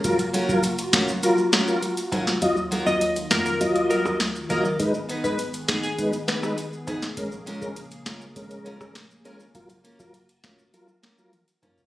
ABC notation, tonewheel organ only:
X:1
M:4/4
L:1/16
Q:1/4=101
K:Gb
V:1 name="Tonewheel organ"
[G,FB] z2 [G,FB] z4 [G,FB] z2 [G,FB] z4 | [G,Fe] z2 [G,Fe] z4 [G,Fe]3 [G,Fe] z2 [G,Fe] z | [A,Ec] z2 [A,Ec] z4 [A,Ec] z2 [A,Ec] z4 | [A,DB] z2 [A,DB] z4 [A,DB]3 [A,DB] z2 [A,DB] z |
[G,FB] z2 [G,FB] z4 [G,FB] z2 [G,FB] z4 |]